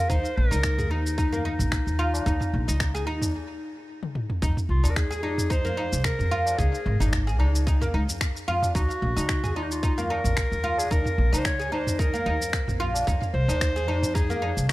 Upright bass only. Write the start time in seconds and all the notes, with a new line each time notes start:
0.10 D#2
0.37 A#1
0.52 C#2
0.91 D#2
1.60 A#1
1.87 D#2
2.26 D#2
2.53 A#1
2.68 C#2
3.07 D#2
4.42 F2
4.69 C2
4.84 D#2
5.23 F2
5.93 C2
6.19 F2
6.59 C#2
6.86 G#1
7.00 G#1
7.40 C#2
7.94 C#2
8.75 D#2
9.02 A#1
9.17 C#2
9.56 D#2
10.25 A#1
10.52 D#2
10.91 D#2
11.18 A#1
11.33 C#2
11.72 D#2
12.26 D#2
12.68 A#1
13.07 F2
13.34 C2
13.48 D#2
13.88 F2
14.57 C2